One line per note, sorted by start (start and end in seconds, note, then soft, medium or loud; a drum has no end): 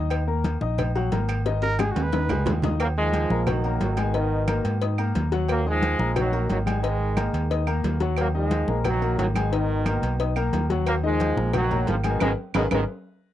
0.00 0.56 D#2 loud
0.00 0.21 D#4 medium
0.00 0.22 D#5 medium
0.00 0.22 D#6 medium
0.10 cowbell loud
0.10 low agogo loud
0.10 claves medium
0.27 0.55 A#3 medium
0.27 0.55 A#4 medium
0.27 0.56 A#5 medium
0.27 high conga soft
0.44 cowbell medium
0.44 high conga loud
0.44 low agogo medium
0.61 1.09 A#1 loud
0.61 0.89 D#4 medium
0.61 0.89 D#5 medium
0.61 0.90 D#6 medium
0.61 high conga loud
0.78 cowbell loud
0.78 high conga soft
0.78 low conga medium
0.78 low agogo loud
0.78 claves medium
0.95 1.09 F#3 medium
0.95 1.09 F#4 medium
0.95 1.10 F#5 medium
0.95 high conga soft
0.95 low agogo loud
1.12 1.90 G#1 medium
1.12 1.40 A#3 medium
1.12 1.40 A#4 medium
1.12 1.40 A#5 medium
1.12 cowbell medium
1.12 high conga medium
1.12 low timbale medium
1.12 low agogo medium
1.29 cowbell medium
1.29 low agogo loud
1.29 claves medium
1.46 1.74 D#3 medium
1.46 1.74 D#4 medium
1.46 1.74 D#5 medium
1.46 cowbell loud
1.46 high bongo medium
1.46 high conga soft
1.62 1.81 A#4 loud
1.62 high bongo medium
1.62 high conga soft
1.79 2.07 G#3 medium
1.79 1.93 G#4 medium
1.79 2.07 G#4 medium
1.79 2.07 G#5 medium
1.79 cowbell medium
1.79 high bongo loud
1.79 high conga loud
1.79 low agogo loud
1.79 claves medium
1.92 2.04 F#4 medium
1.96 2.27 D#2 loud
1.96 cowbell medium
1.96 high conga medium
1.96 high timbale medium
1.96 low agogo medium
2.03 2.53 B4 loud
2.13 2.27 D#3 medium
2.13 2.27 D#4 medium
2.13 2.27 D#5 medium
2.13 cowbell loud
2.13 low bongo loud
2.13 high conga loud
2.13 high timbale medium
2.29 2.45 C#2 medium
2.29 2.58 G#3 medium
2.29 2.58 G#4 medium
2.29 2.58 G#5 medium
2.29 low conga loud
2.29 low timbale loud
2.29 low agogo loud
2.29 claves medium
2.46 3.25 D#2 medium
2.46 cowbell medium
2.46 low bongo loud
2.46 low conga loud
2.46 low timbale loud
2.46 low agogo medium
2.62 2.78 D#4 medium
2.62 2.78 D#5 medium
2.62 2.78 D#6 medium
2.62 cowbell medium
2.62 low bongo loud
2.62 low conga medium
2.62 low timbale loud
2.80 2.88 F#3 medium
2.80 2.88 A#3 loud
2.80 cowbell loud
2.80 high conga soft
2.80 low agogo loud
2.80 claves medium
2.97 3.25 D#3 medium
2.97 3.45 F3 medium
2.97 3.44 G#3 loud
2.97 3.25 D#4 medium
2.97 3.25 D#5 medium
2.97 high conga soft
3.13 cowbell medium
3.13 high conga loud
3.13 low agogo loud
3.30 3.77 A#1 loud
3.30 3.44 A#3 medium
3.30 3.45 A#4 medium
3.30 3.45 A#5 medium
3.30 high conga loud
3.47 3.80 D#3 medium
3.47 3.61 F#3 medium
3.47 3.80 F#3 loud
3.47 3.61 F#4 medium
3.47 3.61 F#5 medium
3.47 cowbell loud
3.47 high conga soft
3.47 low conga medium
3.47 low agogo loud
3.47 claves medium
3.64 3.92 A#3 medium
3.64 3.92 A#4 medium
3.64 3.93 A#5 medium
3.64 high conga soft
3.64 low agogo medium
3.81 4.59 G#1 medium
3.81 3.97 D#3 medium
3.81 3.96 F#3 medium
3.81 cowbell medium
3.81 high conga medium
3.81 low timbale medium
3.81 low agogo medium
3.97 4.95 B2 medium
3.97 4.95 D#3 loud
3.97 4.11 G#3 medium
3.97 4.12 G#4 medium
3.97 4.12 G#5 medium
3.97 cowbell medium
3.97 low agogo loud
3.97 claves medium
4.14 4.42 D#3 medium
4.14 4.42 D#4 medium
4.14 4.43 D#5 medium
4.14 cowbell loud
4.14 high conga soft
4.32 high conga soft
4.48 4.75 A#3 medium
4.48 4.75 A#4 medium
4.48 4.76 A#5 medium
4.48 cowbell medium
4.48 high conga loud
4.48 low agogo loud
4.48 claves medium
4.65 5.12 G#2 loud
4.65 cowbell medium
4.65 high conga soft
4.65 low agogo medium
4.82 4.96 D#4 medium
4.82 4.96 D#5 medium
4.82 4.96 D#6 medium
4.82 cowbell loud
4.82 high conga soft
4.98 5.26 A#3 medium
4.98 5.26 A#4 medium
4.98 5.26 A#5 medium
4.98 high conga soft
4.98 low agogo loud
4.98 claves medium
5.15 5.94 D#2 loud
5.15 cowbell medium
5.15 high conga medium
5.15 low timbale medium
5.15 low agogo medium
5.32 5.59 F#3 medium
5.32 5.60 F#4 medium
5.32 5.60 F#5 medium
5.32 cowbell medium
5.48 5.65 F#3 medium
5.48 5.65 A#3 loud
5.48 cowbell loud
5.48 high conga soft
5.48 low agogo loud
5.48 claves medium
5.66 5.93 D#3 medium
5.66 6.13 F3 medium
5.66 6.14 G#3 loud
5.66 5.93 D#4 medium
5.66 5.94 D#5 medium
5.66 high conga soft
5.82 cowbell medium
5.82 high conga loud
5.82 low agogo medium
5.99 6.46 A#1 loud
5.99 6.13 A#3 medium
5.99 6.13 A#4 medium
5.99 6.13 A#5 medium
5.99 high conga loud
6.16 6.48 D#3 medium
6.16 6.30 F#3 medium
6.16 6.48 F#3 loud
6.16 6.30 F#4 medium
6.16 6.30 F#5 medium
6.16 cowbell loud
6.16 high conga soft
6.16 low conga medium
6.16 low agogo loud
6.16 claves medium
6.32 6.60 A#3 medium
6.32 6.60 A#4 medium
6.32 6.60 A#5 medium
6.32 high conga soft
6.32 low agogo loud
6.49 7.28 G#1 medium
6.49 6.58 D#3 medium
6.49 6.59 F#3 medium
6.49 cowbell medium
6.49 high conga loud
6.49 low timbale medium
6.49 low agogo medium
6.66 7.64 D#3 medium
6.66 6.80 G#3 medium
6.66 7.65 G#3 loud
6.66 6.80 G#4 medium
6.66 6.80 G#5 medium
6.66 cowbell medium
6.66 high conga medium
6.66 low agogo loud
6.66 claves medium
6.82 7.10 D#3 medium
6.82 7.10 D#4 medium
6.82 7.11 D#5 medium
6.82 cowbell loud
7.00 high conga soft
7.17 7.44 A#3 medium
7.17 7.44 A#4 medium
7.17 7.45 A#5 medium
7.17 cowbell medium
7.17 high conga loud
7.17 low agogo loud
7.17 claves medium
7.33 7.80 D#2 loud
7.33 cowbell medium
7.33 high conga soft
7.33 low agogo medium
7.50 7.64 D#4 medium
7.50 7.64 D#5 medium
7.50 7.65 D#6 medium
7.50 cowbell loud
7.50 high conga soft
7.67 7.95 A#3 medium
7.67 7.95 A#4 medium
7.67 7.95 A#5 medium
7.67 high conga soft
7.67 low agogo loud
7.67 claves medium
7.84 8.62 D#2 medium
7.84 cowbell medium
7.84 high conga medium
7.84 low timbale medium
7.84 low agogo medium
8.00 8.28 F#3 medium
8.00 8.28 F#4 medium
8.00 8.29 F#5 medium
8.00 cowbell medium
8.00 high conga medium
8.17 8.27 F#3 medium
8.17 8.27 A#3 loud
8.17 cowbell loud
8.17 high conga soft
8.17 low agogo loud
8.17 claves medium
8.34 8.62 D#3 medium
8.34 8.82 F3 medium
8.34 8.82 G#3 loud
8.34 8.62 D#4 medium
8.34 8.62 D#5 medium
8.34 high conga soft
8.51 cowbell medium
8.51 high conga loud
8.51 low agogo loud
8.68 9.15 A#1 loud
8.68 8.82 A#3 medium
8.68 8.82 A#4 medium
8.68 8.82 A#5 medium
8.68 high conga loud
8.84 9.17 D#3 medium
8.84 8.99 F#3 medium
8.84 9.17 F#3 loud
8.84 8.99 F#4 medium
8.84 8.99 F#5 medium
8.84 cowbell loud
8.84 high conga soft
8.84 low conga medium
8.84 low agogo loud
8.84 claves medium
9.01 9.29 A#3 medium
9.01 9.30 A#4 medium
9.01 9.30 A#5 medium
9.01 high conga soft
9.01 low agogo medium
9.18 9.97 G#1 loud
9.18 9.26 D#3 medium
9.18 9.26 F#3 medium
9.18 cowbell medium
9.18 high conga medium
9.18 low timbale medium
9.18 low agogo medium
9.35 10.33 B2 medium
9.35 10.32 D#3 loud
9.35 9.49 G#3 medium
9.35 9.49 G#4 medium
9.35 9.50 G#5 medium
9.35 cowbell medium
9.35 high conga medium
9.35 low agogo loud
9.35 claves medium
9.52 9.80 D#3 medium
9.52 9.80 D#4 medium
9.52 9.80 D#5 medium
9.52 cowbell loud
9.52 high conga soft
9.69 high conga soft
9.86 10.13 A#3 medium
9.86 10.14 A#4 medium
9.86 10.14 A#5 medium
9.86 cowbell medium
9.86 high conga loud
9.86 low agogo loud
9.86 claves medium
10.02 10.49 B1 loud
10.02 cowbell medium
10.02 high conga soft
10.02 low agogo medium
10.20 10.34 D#4 medium
10.20 10.34 D#5 medium
10.20 10.34 D#6 medium
10.20 cowbell loud
10.20 high conga soft
10.36 10.64 A#3 medium
10.36 10.64 A#4 medium
10.36 10.64 A#5 medium
10.36 high conga soft
10.36 low agogo loud
10.36 claves medium
10.53 11.31 D#2 medium
10.53 cowbell medium
10.53 high conga medium
10.53 low timbale medium
10.53 low agogo medium
10.70 10.97 F#3 medium
10.70 10.98 F#4 medium
10.70 10.98 F#5 medium
10.70 cowbell medium
10.70 high conga medium
10.86 10.95 F#3 medium
10.86 10.95 A#3 loud
10.86 cowbell loud
10.86 high conga soft
10.86 low agogo loud
10.86 claves medium
11.03 11.31 D#3 medium
11.03 11.51 F3 medium
11.03 11.51 G#3 loud
11.03 11.31 D#4 medium
11.03 11.31 D#5 medium
11.03 high conga soft
11.20 cowbell medium
11.20 high conga loud
11.20 low agogo loud
11.37 11.84 A#1 loud
11.37 11.51 A#3 medium
11.37 11.51 A#4 medium
11.37 11.51 A#5 medium
11.37 high conga loud
11.53 11.86 D#3 medium
11.53 11.67 F#3 medium
11.53 11.85 F#3 loud
11.53 11.68 F#4 medium
11.53 11.68 F#5 medium
11.53 cowbell loud
11.53 high conga soft
11.53 low conga medium
11.53 low agogo loud
11.53 claves medium
11.71 11.98 A#3 medium
11.71 11.98 A#4 medium
11.71 11.99 A#5 medium
11.71 high conga soft
11.71 low conga medium
11.71 low agogo medium
11.87 12.19 G#1 loud
11.87 11.96 C#3 medium
11.87 11.96 F3 medium
11.87 cowbell medium
11.87 high conga medium
11.87 low timbale medium
11.87 low agogo medium
12.04 12.21 B2 medium
12.04 12.21 D#3 medium
12.04 12.18 G#3 medium
12.04 12.18 G#4 medium
12.04 12.18 G#5 medium
12.04 cowbell medium
12.04 high conga medium
12.04 low agogo loud
12.04 claves medium
12.20 12.33 G#1 medium
12.20 12.30 B2 loud
12.20 12.30 D#3 loud
12.20 12.30 G#3 loud
12.20 12.32 G#4 loud
12.20 12.32 A#4 loud
12.20 12.32 B4 medium
12.20 cowbell loud
12.20 high conga loud
12.20 high timbale loud
12.20 claves loud
12.54 12.67 G#1 loud
12.54 12.63 B2 loud
12.54 12.63 D#3 medium
12.54 12.63 G#3 medium
12.54 12.66 G#4 loud
12.54 12.66 A#4 loud
12.54 12.66 B4 loud
12.54 cowbell loud
12.54 high conga loud
12.54 high timbale loud
12.54 claves loud
12.71 12.84 G#1 loud
12.71 12.80 B2 loud
12.71 12.80 D#3 loud
12.71 12.80 G#3 loud
12.71 12.82 G#4 loud
12.71 12.82 A#4 loud
12.71 12.82 B4 medium
12.71 cowbell loud
12.71 high conga loud
12.71 high timbale loud
12.71 claves loud